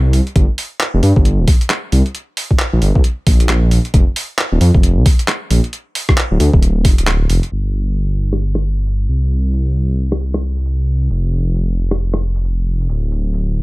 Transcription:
Already playing: detuned saw bass C2
0.13 open hi-hat
0.27 closed hi-hat
0.36 detuned saw bass G1, kick, closed hi-hat
0.58 open hi-hat
0.80 clap, closed hi-hat
0.94 detuned saw bass F1
1.03 detuned saw bass G2, open hi-hat
1.16 detuned saw bass G1, kick
1.25 closed hi-hat
1.39 detuned saw bass D1
1.48 kick, open hi-hat
1.61 closed hi-hat
1.70 cross-stick, clap, closed hi-hat
1.92 detuned saw bass C2, open hi-hat
2.06 closed hi-hat
2.15 closed hi-hat
2.37 open hi-hat
2.51 kick
2.59 clap, closed hi-hat
2.73 detuned saw bass A#1
2.82 detuned saw bass G1, open hi-hat
2.95 detuned saw bass C2, kick
3.04 closed hi-hat
3.27 detuned saw bass A#1, kick, open hi-hat
3.40 closed hi-hat
3.49 cross-stick, clap, closed hi-hat
3.71 open hi-hat
3.85 closed hi-hat
3.94 detuned saw bass F1, kick, closed hi-hat
4.16 open hi-hat
4.39 clap, closed hi-hat
4.52 detuned saw bass D#1
4.61 detuned saw bass F2, open hi-hat
4.74 detuned saw bass F1, kick
4.83 closed hi-hat
4.97 detuned saw bass C2
5.06 kick, open hi-hat
5.19 closed hi-hat
5.28 cross-stick, clap, closed hi-hat
5.50 detuned saw bass A#1, open hi-hat
5.64 closed hi-hat
5.73 closed hi-hat
5.95 open hi-hat
6.09 kick, cross-stick
6.18 clap, closed hi-hat
6.31 detuned saw bass D1
6.40 detuned saw bass D2, open hi-hat
6.53 detuned saw bass D1, kick
6.62 closed hi-hat
6.85 detuned saw bass F1, kick, open hi-hat
6.98 detuned saw bass D1, closed hi-hat
7.07 cross-stick, clap, closed hi-hat
7.30 detuned saw bass F1, open hi-hat
7.43 closed hi-hat
7.52 detuned saw bass G1, closed hi-hat
7.74 closed hi-hat
7.97 closed hi-hat
8.33 cross-stick
8.41 closed hi-hat
8.55 cross-stick
8.78 closed hi-hat
8.86 closed hi-hat
9.09 detuned saw bass C2
9.22 closed hi-hat
9.31 closed hi-hat
9.54 closed hi-hat
9.76 closed hi-hat
10.12 cross-stick
10.21 closed hi-hat
10.34 cross-stick
10.57 closed hi-hat
10.66 closed hi-hat
11.02 closed hi-hat
11.10 detuned saw bass F1, closed hi-hat
11.33 closed hi-hat
11.55 closed hi-hat
11.91 cross-stick
12.00 closed hi-hat
12.14 cross-stick
12.36 closed hi-hat
12.45 closed hi-hat
12.81 closed hi-hat
12.89 detuned saw bass D1, closed hi-hat
13.12 closed hi-hat
13.34 closed hi-hat

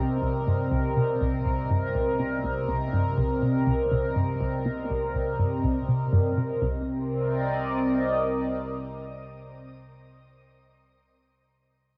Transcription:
Already playing: synth drone C2, analog synth pad C3 C4 A#4 D5 D#5
0.00 synth arpeggio sound C2
0.23 synth arpeggio sound C2
0.47 synth arpeggio sound G2
0.72 synth arpeggio sound C2
0.97 synth arpeggio sound C3
1.21 synth arpeggio sound C2
1.46 synth arpeggio sound C2
1.70 synth arpeggio sound G2
1.95 synth arpeggio sound C2
2.19 synth arpeggio sound C3
2.44 synth arpeggio sound C2
2.69 synth arpeggio sound C2
2.93 synth arpeggio sound G2
3.18 synth arpeggio sound C2
3.42 synth arpeggio sound C3
3.67 synth arpeggio sound C2
3.91 synth arpeggio sound C2
4.16 synth arpeggio sound G2
4.41 synth arpeggio sound C2
4.65 synth arpeggio sound C3
4.90 synth arpeggio sound C2
5.14 synth arpeggio sound C2
5.39 synth arpeggio sound G2
5.64 synth arpeggio sound C2
5.88 synth arpeggio sound C3
6.13 synth arpeggio sound G2
6.37 synth arpeggio sound C3
6.62 synth arpeggio sound C2, synth drone C2, analog synth pad C3
6.69 analog synth pad C4
6.77 analog synth pad A#4
6.84 analog synth pad D5
6.92 analog synth pad D#5

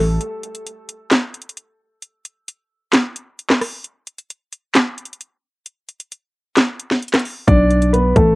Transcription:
Already playing: 808-style bass A1
0.21 closed hi-hat
0.43 closed hi-hat
0.55 closed hi-hat
0.67 closed hi-hat
0.89 closed hi-hat
1.11 snare, clap, closed hi-hat
1.34 closed hi-hat
1.42 closed hi-hat
1.49 closed hi-hat
1.57 closed hi-hat
2.03 closed hi-hat
2.25 closed hi-hat
2.48 closed hi-hat
2.93 snare, clap, closed hi-hat
3.16 closed hi-hat
3.39 closed hi-hat
3.50 cross-stick, snare, clap
3.61 cross-stick, open hi-hat
3.84 closed hi-hat
4.07 closed hi-hat
4.18 closed hi-hat
4.30 closed hi-hat
4.52 closed hi-hat
4.75 snare, clap, closed hi-hat
4.98 closed hi-hat
5.05 closed hi-hat
5.13 closed hi-hat
5.21 closed hi-hat
5.66 closed hi-hat
5.89 closed hi-hat
6.00 closed hi-hat
6.12 closed hi-hat
6.57 snare, clap, closed hi-hat
6.79 closed hi-hat
6.91 snare
7.02 closed hi-hat
7.08 closed hi-hat
7.14 cross-stick, snare, clap, closed hi-hat
7.19 closed hi-hat
7.25 open hi-hat
7.47 808-style bass B1, grand piano D4 D5, kick, closed hi-hat
7.71 closed hi-hat
7.82 closed hi-hat
7.93 grand piano B3 B4, closed hi-hat
8.16 808-style bass A1, grand piano A3 A4, kick, closed hi-hat

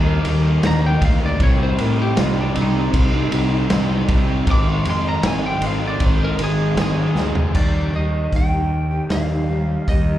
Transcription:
Already playing: fingered electric bass D#2, overdriven electric guitar D#3 A#3 D#4, lead electric guitar D#4
0.06 distorted electric guitar G3 A#3 D#4
0.25 fingered electric bass D#2, distorted electric guitar D#3 G3 A#3 D#4, ride
0.43 overdriven electric guitar G3 A#3 D#4
0.62 fingered electric bass D#2, distorted electric guitar D#3 G3 A#3 D#4, snare, ride
0.67 lead electric guitar A#5
0.82 distorted electric guitar G3 A#3 D#4
0.86 lead electric guitar G5
1.00 fingered electric bass D2, distorted electric guitar D#3 G3 A#3 D#4, kick, ride
1.05 lead electric guitar F5
1.20 distorted electric guitar G3 A#3 D#4
1.26 lead electric guitar D5
1.40 fingered electric bass C2, distorted electric guitar C3 G3 C4 D#4, lead electric guitar C#5, kick, ride
1.58 overdriven electric guitar G3 C4 D#4
1.63 lead electric guitar C5
1.78 fingered electric bass A2, distorted electric guitar C3 G3 C4 D#4, lead electric guitar A#4, ride
1.96 distorted electric guitar G3 C4 D#4
2.02 lead electric guitar G4
2.15 fingered electric bass C2, distorted electric guitar C3 G3 C4 D#4, snare, ride
2.20 lead electric guitar F4
2.41 lead electric guitar D4
2.53 fingered electric bass C2, overdriven electric guitar C3 G3 C4 D#4, muted distorted electric guitar stroke, ride
2.57 overdriven electric guitar C3, lead electric guitar D#4
2.73 distorted electric guitar G3 C4 D#4
2.94 fingered electric bass C2, kick, ride
3.13 distorted electric guitar G3 C4 D#4
3.31 fingered electric bass C2, distorted electric guitar C3 G3 C4 D#4, ride
3.50 overdriven electric guitar G3 C4 D#4
3.70 fingered electric bass C2, distorted electric guitar C3 G3 C4 D#4, snare, ride
3.88 distorted electric guitar G3 C4 D#4
4.07 fingered electric bass C2, distorted electric guitar C3 G3 C4 D#4, kick, ride
4.27 distorted electric guitar G3 C4 D#4
4.46 fingered electric bass G#1, distorted electric guitar G#2 D#3 G#3 C4 D#4, kick, ride
4.51 lead electric guitar D6
4.65 overdriven electric guitar G#3 C4 D#4
4.69 lead electric guitar C#6
4.84 fingered electric bass F2, distorted electric guitar D#3 G#3 C4 D#4, ride
4.91 lead electric guitar C6
5.03 distorted electric guitar G#3 C4 D#4
5.09 lead electric guitar A#5
5.22 fingered electric bass G#1, distorted electric guitar G#2 D#3 G#3 C4 D#4, snare, ride
5.27 lead electric guitar G#5
5.46 lead electric guitar G5
5.61 fingered electric bass G#1, overdriven electric guitar G#2 D#3 G#3 C4 D#4, muted distorted electric guitar stroke, ride
5.67 lead electric guitar F5
5.80 distorted electric guitar G#3 C4 D#4
5.87 lead electric guitar D5
6.00 fingered electric bass G#1, kick, ride
6.06 lead electric guitar C5
6.20 distorted electric guitar G#3 C4 D#4
6.24 lead electric guitar A#4
6.39 fingered electric bass G#1, distorted electric guitar D#3 G#3 C4 D#4, ride
6.44 lead electric guitar G#4
6.57 overdriven electric guitar G#3 C4 D#4
6.77 fingered electric bass G#1, distorted electric guitar G#2 D#3 G#3 C4 D#4, snare, ride
6.81 lead electric guitar G#4
6.98 distorted electric guitar G#3 C4 D#4
7.15 fingered electric bass D2, distorted electric guitar D#3 G#3 C4 D#4, snare
7.35 distorted electric guitar G#3 C4 D#4, floor tom
7.54 fingered electric bass D#2, steel-string acoustic guitar D#3 G3 A#3 D#4 G4, lead electric guitar D5, kick, crash
7.93 fingered electric bass D#2, steel-string acoustic guitar G3 A#3 D#4 G4, lead electric guitar D#5
8.32 fingered electric bass D#2, steel-string acoustic guitar D#3 G3 A#3 D#4 G4, kick, open hi-hat
8.36 lead electric guitar G5
8.52 steel-string acoustic guitar A#3 D#4 G4
8.72 muted steel-string acoustic guitar stroke
8.90 steel-string acoustic guitar A#3 D#4 G4
9.09 fingered electric bass D#2, lead electric guitar F5, snare, open hi-hat
9.30 steel-string acoustic guitar A#3 D#4 G4
9.49 steel-string acoustic guitar G3 A#3 D#4 G4
9.87 fingered electric bass D#2, steel-string acoustic guitar D#3 G3 A#3 D#4 G4, lead electric guitar D#5, kick, open hi-hat
10.08 steel-string acoustic guitar A#3 D#4 G4

